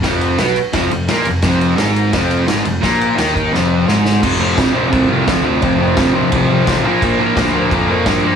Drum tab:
CC |--------|--------|--------|x-x-x-x-|
RD |xxxxxxxx|xxxxxxxx|xxxx----|--------|
SD |o-o-o-o-|o-o-o-o-|o-o-o-oo|--o---o-|
BD |o---o---|o---o---|o--o----|o-o-o-o-|

CC |x-x-x-x-|x-x-x-x-|
RD |--------|--------|
SD |--o---o-|--o---o-|
BD |o-o-o-o-|o-o-o-o-|